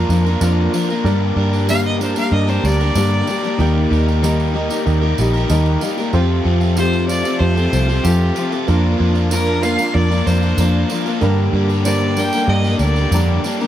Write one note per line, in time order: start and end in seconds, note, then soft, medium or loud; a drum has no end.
0.00 1.02 A#3 medium
0.00 0.27 D4 medium
0.00 1.02 D4 medium
0.00 0.26 F4 medium
0.00 0.27 F4 medium
0.00 1.02 F4 medium
0.00 0.25 A#4 medium
0.00 0.27 A#4 medium
0.00 1.02 A#4 medium
0.00 0.27 D5 medium
0.09 0.35 F2 loud
0.09 0.25 F3 medium
0.09 0.26 A#3 medium
0.09 0.26 D4 medium
0.09 0.24 A#4 medium
0.09 tambourine medium
0.25 0.41 A#3 soft
0.25 0.41 D4 medium
0.25 0.42 F4 medium
0.25 0.43 A#4 medium
0.25 tambourine soft
0.41 0.67 F2 loud
0.41 0.71 D3 loud
0.41 1.03 F3 medium
0.41 0.73 A#3 loud
0.41 0.90 D4 medium
0.41 0.73 D4 loud
0.41 0.90 F4 medium
0.41 0.74 F4 loud
0.41 0.91 A#4 medium
0.41 0.75 A#4 loud
0.41 0.91 D5 loud
0.41 tambourine loud
0.73 1.03 D3 medium
0.73 0.89 F3 medium
0.73 0.90 A#3 medium
0.73 0.91 D4 medium
0.73 0.90 F4 medium
0.73 0.89 A#4 medium
0.73 tambourine medium
0.89 1.05 A#3 medium
0.89 1.05 D4 medium
0.89 1.04 F4 medium
0.89 1.08 A#4 medium
0.89 tambourine soft
1.03 1.30 G2 loud
1.03 1.68 G2 medium
1.03 1.69 D3 medium
1.03 1.36 G3 medium
1.03 3.56 A#3 medium
1.03 1.70 A#3 loud
1.03 3.57 D4 medium
1.03 1.54 D4 loud
1.03 1.36 D4 loud
1.03 3.56 G4 medium
1.03 1.54 G4 loud
1.03 1.38 G4 medium
1.03 3.57 A#4 medium
1.03 1.54 A#4 loud
1.03 1.55 D5 loud
1.03 tambourine soft
1.08 1.38 A#4 loud
1.36 2.13 G2 medium
1.36 1.67 G3 medium
1.36 1.53 D4 medium
1.36 1.52 G4 medium
1.36 1.51 A#4 loud
1.51 1.68 D4 medium
1.51 1.70 G4 medium
1.51 1.70 A#4 medium
1.51 tambourine soft
1.67 2.01 G2 medium
1.67 2.01 D3 medium
1.67 2.00 G3 medium
1.67 2.00 A#3 loud
1.67 1.93 D4 medium
1.67 2.00 D4 loud
1.67 1.93 G4 medium
1.67 2.02 G4 loud
1.67 1.94 A#4 medium
1.67 2.03 A#4 loud
1.67 1.94 D5 medium
1.67 1.84 F5 loud
1.67 tambourine loud
1.85 2.00 D#5 loud
1.85 tambourine soft
1.99 2.93 G3 medium
1.99 2.16 A#3 medium
1.99 2.25 D4 medium
1.99 2.17 D4 medium
1.99 2.25 G4 medium
1.99 2.17 G4 medium
1.99 2.25 A#4 medium
1.99 2.17 C5 medium
1.99 2.25 D5 medium
1.99 tambourine medium
2.04 2.14 A#4 medium
2.15 2.50 G3 soft
2.15 2.49 A#3 medium
2.15 2.48 D4 medium
2.15 2.48 G4 medium
2.15 2.46 A#4 medium
2.15 2.32 F5 loud
2.15 tambourine medium
2.32 2.58 G2 loud
2.32 2.81 D4 medium
2.32 2.81 G4 medium
2.32 2.82 A#4 medium
2.32 2.82 D5 medium
2.32 2.51 D#5 medium
2.47 2.62 G3 soft
2.47 2.64 A#3 soft
2.47 2.81 D4 medium
2.47 2.81 G4 medium
2.47 2.78 A#4 medium
2.47 2.67 C5 loud
2.47 tambourine soft
2.64 2.90 D2 medium
2.64 2.95 G3 medium
2.64 2.96 A#3 medium
2.64 2.96 D4 medium
2.64 2.96 G4 medium
2.64 3.88 D5 loud
2.64 tambourine medium
2.79 2.94 D4 medium
2.79 2.96 G4 medium
2.79 2.96 A#4 medium
2.79 tambourine soft
2.94 3.21 G2 loud
2.94 3.28 G2 medium
2.94 3.28 D3 medium
2.94 3.26 G3 medium
2.94 3.28 A#3 medium
2.94 3.27 D4 loud
2.94 3.45 D4 medium
2.94 3.29 G4 loud
2.94 3.45 G4 medium
2.94 3.45 A#4 medium
2.94 3.28 A#4 loud
2.94 3.46 D5 medium
2.94 tambourine medium
3.27 3.58 G3 medium
3.27 3.44 A#3 medium
3.27 3.44 D4 medium
3.27 3.44 G4 medium
3.27 3.41 A#4 medium
3.27 tambourine medium
3.43 3.58 G3 medium
3.43 3.58 A#3 medium
3.43 3.59 D4 medium
3.43 3.59 G4 medium
3.43 3.57 A#4 medium
3.43 tambourine soft
3.57 3.85 D#2 loud
3.57 4.21 D#3 medium
3.57 3.90 G3 loud
3.57 3.89 A#3 loud
3.57 6.11 A#3 medium
3.57 6.11 D#4 medium
3.57 4.09 D#4 loud
3.57 4.23 D#4 loud
3.57 6.11 G4 medium
3.57 3.91 G4 loud
3.57 4.09 G4 medium
3.57 6.11 A#4 medium
3.57 3.92 A#4 medium
3.57 4.09 A#4 loud
3.57 4.10 G5 loud
3.57 tambourine soft
3.90 4.68 D#2 loud
3.90 4.08 G3 medium
3.90 4.21 A#3 medium
3.90 4.07 G4 medium
3.90 4.05 A#4 medium
3.90 tambourine soft
4.06 4.22 G3 medium
4.06 4.23 G4 medium
4.06 4.24 A#4 medium
4.06 tambourine soft
4.22 4.86 D#3 medium
4.22 4.53 G3 medium
4.22 4.52 A#3 medium
4.22 4.47 D#4 loud
4.22 4.55 D#4 loud
4.22 4.48 G4 medium
4.22 4.54 G4 loud
4.22 4.48 A#4 medium
4.22 4.55 A#4 loud
4.22 4.48 D#5 loud
4.22 tambourine loud
4.40 tambourine soft
4.53 4.71 G3 medium
4.53 5.02 A#3 medium
4.53 4.79 D#4 medium
4.53 4.70 D#4 medium
4.53 4.79 G4 medium
4.53 4.70 G4 medium
4.53 4.80 A#4 medium
4.53 4.68 A#4 medium
4.53 4.80 D#5 medium
4.69 5.03 G3 medium
4.69 5.03 A#3 soft
4.69 5.02 D#4 medium
4.69 5.01 G4 medium
4.69 4.99 A#4 medium
4.69 tambourine medium
4.86 5.13 D#2 medium
4.86 5.35 D#4 medium
4.86 5.36 G4 medium
4.86 5.36 A#4 medium
4.86 5.36 D#5 loud
4.86 tambourine soft
5.01 5.35 G3 medium
5.01 5.18 A#3 medium
5.01 5.19 D#4 medium
5.01 5.34 G4 medium
5.01 5.32 A#4 medium
5.18 5.44 A#1 medium
5.18 5.49 G3 medium
5.18 5.50 A#3 medium
5.18 5.50 D#4 medium
5.18 5.51 G4 medium
5.18 5.48 A#5 medium
5.18 tambourine medium
5.33 5.50 G3 medium
5.33 5.50 G4 medium
5.33 5.51 A#4 medium
5.33 tambourine soft
5.49 5.76 D#2 loud
5.49 6.12 D#3 medium
5.49 5.81 G3 loud
5.49 5.80 A#3 loud
5.49 5.99 D#4 medium
5.49 5.82 D#4 loud
5.49 5.99 G4 medium
5.49 5.82 G4 loud
5.49 5.99 A#4 medium
5.49 5.83 A#4 loud
5.49 6.00 D#5 loud
5.49 5.65 A5 medium
5.49 tambourine medium
5.66 5.81 G5 medium
5.66 tambourine soft
5.81 5.99 G3 medium
5.81 6.12 A#3 medium
5.81 5.98 D#4 medium
5.81 5.98 G4 medium
5.81 5.97 A#4 medium
5.81 6.12 F5 medium
5.81 tambourine medium
5.98 6.13 G3 medium
5.98 6.14 A#3 medium
5.98 6.14 D#4 medium
5.98 6.13 G4 medium
5.98 6.12 A#4 medium
5.98 tambourine soft
6.13 6.75 F2 medium
6.13 6.39 F2 loud
6.13 6.75 C3 loud
6.13 6.44 F3 medium
6.13 6.44 A3 loud
6.13 8.65 C4 medium
6.13 6.45 C4 loud
6.13 6.63 F4 loud
6.13 8.66 F4 medium
6.13 6.46 F4 loud
6.13 6.63 G4 loud
6.13 8.65 G4 medium
6.13 6.78 G4 medium
6.13 6.63 A4 loud
6.13 8.66 A4 medium
6.13 6.78 A4 loud
6.13 6.63 C5 loud
6.13 tambourine soft
6.44 7.22 F2 loud
6.44 6.63 F3 medium
6.44 6.61 A3 medium
6.44 6.60 C4 medium
6.44 6.60 F4 medium
6.60 6.76 F3 medium
6.60 6.76 A3 medium
6.60 6.77 C4 medium
6.60 6.78 F4 medium
6.60 tambourine soft
6.75 8.03 F2 medium
6.75 7.41 C3 loud
6.75 7.07 F3 loud
6.75 7.08 A3 loud
6.75 7.09 C4 loud
6.75 7.01 F4 medium
6.75 7.11 F4 loud
6.75 7.02 G4 medium
6.75 7.09 G4 medium
6.75 7.02 A4 medium
6.75 7.10 A4 medium
6.75 7.07 C5 loud
6.75 7.02 C5 medium
6.75 tambourine loud
6.93 tambourine soft
7.08 7.25 F3 medium
7.08 7.25 A3 medium
7.08 7.23 C4 medium
7.08 7.34 F4 medium
7.08 7.22 F4 medium
7.08 7.24 G4 medium
7.08 7.34 G4 medium
7.08 7.34 A4 medium
7.08 7.23 A4 medium
7.08 7.35 C5 medium
7.08 7.41 D5 loud
7.08 tambourine medium
7.23 7.57 F3 medium
7.23 7.56 A3 medium
7.23 7.56 C4 medium
7.23 7.54 F4 medium
7.23 7.57 G4 medium
7.23 7.56 A4 medium
7.23 tambourine medium
7.39 7.66 F2 loud
7.39 7.90 F4 medium
7.39 7.90 G4 medium
7.39 7.91 A4 medium
7.39 8.04 C5 loud
7.39 7.91 C5 medium
7.55 7.90 F3 medium
7.55 7.89 A3 medium
7.55 7.88 C4 medium
7.55 7.87 F4 medium
7.55 7.73 G4 medium
7.55 7.73 A4 medium
7.55 tambourine soft
7.72 7.98 C2 medium
7.72 7.88 F3 medium
7.72 7.89 C4 medium
7.72 7.88 G4 medium
7.72 7.87 A4 medium
7.72 tambourine medium
7.88 8.04 F3 medium
7.88 8.04 A3 medium
7.88 8.05 C4 medium
7.88 8.06 F4 medium
7.88 8.04 G4 soft
7.88 8.04 A4 medium
7.88 tambourine soft
8.03 8.66 F2 medium
8.03 8.30 F2 loud
8.03 8.66 C3 medium
8.03 8.34 F3 loud
8.03 8.35 A3 loud
8.03 8.36 C4 loud
8.03 8.53 F4 medium
8.03 8.37 F4 loud
8.03 8.51 G4 medium
8.03 8.53 G4 medium
8.03 8.37 G4 medium
8.03 8.54 A4 medium
8.03 8.37 A4 medium
8.03 8.54 C5 medium
8.03 tambourine loud
8.35 8.53 F3 medium
8.35 8.52 A3 medium
8.35 8.51 C4 medium
8.35 8.50 F4 medium
8.35 8.52 G4 medium
8.35 8.51 A4 medium
8.35 tambourine medium
8.51 8.65 F3 medium
8.51 8.67 A3 medium
8.51 8.66 C4 medium
8.51 8.66 F4 medium
8.51 8.68 G4 medium
8.51 8.68 A4 medium
8.51 tambourine soft
8.66 8.94 F2 loud
8.66 8.96 F3 loud
8.66 9.17 A#3 loud
8.66 8.98 A#3 medium
8.66 11.19 A#3 medium
8.66 9.17 D4 loud
8.66 11.19 D4 medium
8.66 8.99 D4 loud
8.66 11.19 F4 medium
8.66 9.17 F4 loud
8.66 9.00 F4 loud
8.66 11.20 A#4 medium
8.66 9.17 A#4 loud
8.66 9.34 A#4 loud
8.66 tambourine soft
8.98 9.77 F2 loud
8.98 9.29 F3 medium
8.98 9.17 A#3 medium
8.98 9.16 D4 medium
8.98 9.13 F4 medium
9.14 9.31 A#3 medium
9.14 9.32 D4 medium
9.14 9.31 F4 medium
9.14 tambourine soft
9.30 9.61 F3 loud
9.30 9.56 A#3 medium
9.30 9.63 A#3 loud
9.30 9.56 D4 medium
9.30 9.64 D4 loud
9.30 9.56 F4 medium
9.30 9.64 F4 loud
9.30 9.65 A#4 loud
9.30 9.57 A#4 loud
9.30 tambourine loud
9.34 9.65 A#4 loud
9.47 tambourine soft
9.62 10.10 F3 medium
9.62 9.87 A#3 medium
9.62 9.80 A#3 medium
9.62 9.87 D4 medium
9.62 9.78 D4 medium
9.62 9.88 F4 medium
9.62 9.77 F4 medium
9.62 9.88 A#4 medium
9.62 9.78 A#4 medium
9.62 9.95 F5 loud
9.62 tambourine medium
9.78 10.13 A#3 medium
9.78 10.11 D4 medium
9.78 10.09 F4 medium
9.78 10.10 A#4 medium
9.78 tambourine medium
9.93 10.21 F2 loud
9.93 10.43 A#3 medium
9.93 10.44 D4 medium
9.93 10.44 F4 medium
9.93 10.44 A#4 medium
9.93 10.27 D5 loud
10.10 10.44 A#3 medium
10.10 10.42 D4 medium
10.10 10.40 F4 medium
10.10 10.27 A#4 medium
10.10 tambourine soft
10.26 10.52 F2 medium
10.26 10.58 F3 medium
10.26 10.59 A#3 medium
10.26 10.59 D4 medium
10.26 10.60 A#4 medium
10.26 10.90 C5 medium
10.26 tambourine medium
10.42 10.58 A#3 medium
10.42 10.58 D4 medium
10.42 10.59 F4 medium
10.42 tambourine soft
10.57 10.83 F2 loud
10.57 10.88 F3 medium
10.57 11.07 A#3 medium
10.57 10.90 A#3 loud
10.57 11.07 D4 medium
10.57 10.90 D4 loud
10.57 11.08 F4 medium
10.57 10.90 F4 loud
10.57 11.08 A#4 medium
10.57 10.92 A#4 loud
10.57 tambourine loud
10.89 11.19 F3 medium
10.89 11.08 A#3 medium
10.89 11.06 D4 medium
10.89 11.05 F4 medium
10.89 tambourine medium
10.93 11.04 A#4 medium
11.05 11.23 A#3 medium
11.05 11.21 D4 medium
11.05 11.20 F4 medium
11.05 11.22 A#4 medium
11.05 tambourine soft
11.21 11.84 G2 loud
11.21 11.47 G2 loud
11.21 11.85 D3 loud
11.21 13.67 D3 medium
11.21 11.53 G3 medium
11.21 11.70 A#3 loud
11.21 13.67 A#3 medium
11.21 11.54 A#3 loud
11.21 11.71 D4 loud
11.21 11.54 D4 loud
11.21 11.71 G4 loud
11.21 13.67 G4 medium
11.21 11.56 G4 loud
11.21 13.67 A#4 medium
11.21 11.71 A#4 loud
11.21 11.86 A#4 loud
11.21 tambourine soft
11.53 12.30 G2 loud
11.53 11.72 G3 medium
11.53 11.71 A#3 medium
11.53 11.69 D4 medium
11.53 11.68 G4 medium
11.69 11.86 G3 medium
11.69 11.87 A#3 medium
11.69 11.86 D4 medium
11.69 11.88 G4 medium
11.69 tambourine soft
11.85 12.48 G2 medium
11.85 12.49 D3 loud
11.85 12.16 G3 medium
11.85 12.09 A#3 medium
11.85 12.17 A#3 loud
11.85 12.09 D4 medium
11.85 12.18 D4 medium
11.85 12.10 G4 medium
11.85 12.20 G4 medium
11.85 12.17 A#4 medium
11.85 12.10 C5 medium
11.85 12.20 D5 loud
11.85 tambourine loud
12.01 tambourine soft
12.17 12.35 G3 medium
12.17 12.41 A#3 medium
12.17 12.33 A#3 medium
12.17 12.41 D4 medium
12.17 12.33 D4 medium
12.17 12.42 G4 medium
12.17 12.32 G4 medium
12.17 12.42 A#4 medium
12.17 12.32 A#4 medium
12.17 12.51 G5 loud
12.17 tambourine medium
12.32 12.67 G3 medium
12.32 12.66 A#3 medium
12.32 12.64 D4 medium
12.32 12.64 G4 medium
12.32 12.64 A#4 medium
12.32 tambourine medium
12.48 12.74 G2 loud
12.48 12.97 A#3 medium
12.48 12.98 G4 medium
12.48 12.98 A#4 medium
12.48 12.80 D#5 loud
12.64 12.99 G3 medium
12.64 12.97 A#3 medium
12.64 12.96 D4 medium
12.64 12.96 G4 medium
12.64 12.81 A#4 medium
12.64 tambourine soft
12.79 13.05 D2 medium
12.79 13.13 G3 medium
12.79 13.13 A#3 medium
12.79 13.40 D5 medium
12.79 tambourine medium
12.84 13.13 D4 medium
12.84 13.13 A#4 medium
12.96 13.13 G3 medium
12.96 13.13 A#3 medium
12.96 13.13 D4 medium
12.96 13.15 G4 medium
12.96 tambourine soft
13.12 13.37 F2 loud
13.12 13.67 G2 loud
13.12 13.67 D3 loud
13.12 13.43 G3 loud
13.12 13.61 A#3 medium
13.12 13.44 A#3 loud
13.12 13.61 D4 medium
13.12 13.45 D4 loud
13.12 13.61 G4 medium
13.12 13.46 G4 loud
13.12 13.62 A#4 medium
13.12 13.45 A#4 loud
13.12 tambourine loud
13.44 13.62 G3 medium
13.44 13.60 A#3 medium
13.44 13.59 D4 medium
13.44 13.59 G4 medium
13.44 13.59 A#4 medium
13.44 tambourine medium
13.59 13.67 G3 medium
13.59 13.67 A#3 medium
13.59 13.67 D4 medium
13.59 13.67 G4 medium
13.59 13.67 A#4 medium
13.59 tambourine soft